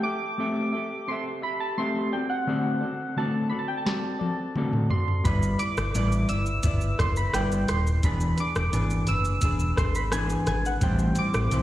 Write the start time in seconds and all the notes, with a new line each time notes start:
0.03 G4 A4 E5 D6
0.38 A3 C4 G4 A4 E5
0.72 A4 E5
0.77 G4
1.08 C4 G4 A4 E5 C6
1.42 A4 E5 B5
1.47 G4
1.60 A5
1.77 A3 C4 G4 A4 E5 C6
2.12 C4 F#4 A4 D5 G5
2.30 F#5
2.47 D3 A3 C4 F#4 A4 D5
2.81 F#4 A4 D5
2.85 C4
3.16 D3 A3 C4 F#4 A4 D5 A5
3.50 F#4 A4 D5 B5
3.54 C4
3.59 A5
3.68 G5
3.77 A5
3.85 C4 F#4 A4 D5 A5, snare
4.19 F#4 A4 D5, high tom
4.24 C4
4.56 D3 A3 C4 F#4 A4 D5, mid tom
4.73 mid tom
4.90 C4 F#4 A4 D5 C6, floor tom
5.08 floor tom
5.24 G1 G3 B3 E4 B4 D5 B5, kick, closed hi-hat, shaker
5.43 shaker
5.58 E4 B4 D5 D6, closed hi-hat, shaker
5.77 G1, cross-stick, shaker
5.94 A1 G3 B3 E4 B4 D5, closed hi-hat, shaker
6.12 shaker
6.29 G1 B4 D5 E6, closed hi-hat, shaker
6.33 E4
6.46 shaker
6.63 G1 B3 E4 B4 D5, kick, closed hi-hat, shaker
6.81 shaker
6.99 F#1 E4 B4 D5 C6, kick, cross-stick, closed hi-hat, shaker
7.16 B5, shaker
7.33 G1 G3 B3 E4 B4 D5 G5, cross-stick, closed hi-hat, shaker
7.52 shaker
7.68 D#1 E4 D5 C6, cross-stick, closed hi-hat, shaker
7.87 shaker
8.03 E1 E3 B3 D4 G#4 B4 B5, kick, closed hi-hat, shaker
8.21 shaker
8.37 D4 G#4 B4 D6, closed hi-hat, shaker
8.56 E1, cross-stick, shaker
8.72 G#1 E3 B3 D4 G#4 B4, closed hi-hat, shaker
8.90 shaker
9.07 F#1 G#4 B4 E6, closed hi-hat, shaker
9.11 D4
9.25 shaker
9.41 E1 B3 D4 G#4 B4, kick, closed hi-hat, shaker
9.60 shaker
9.76 G#1 D4 G#4 B4 C6, kick, cross-stick, closed hi-hat, shaker
9.95 B5, shaker
10.12 E3 B3 D4 G#4 B4 G#5, cross-stick, closed hi-hat, shaker
10.30 shaker
10.46 G#1 D4 G#4 B4 G#5, cross-stick, closed hi-hat, shaker
10.65 F#5, shaker
10.81 A1 A2 E3 G3 C4 E4 C5 G5, kick, closed hi-hat, shaker
10.99 shaker
11.15 C4 E4 C5 D6, closed hi-hat, shaker
11.20 G3
11.34 A1, cross-stick, shaker
11.51 B1 A2 E3 G3 C4 E4 C5, closed hi-hat, shaker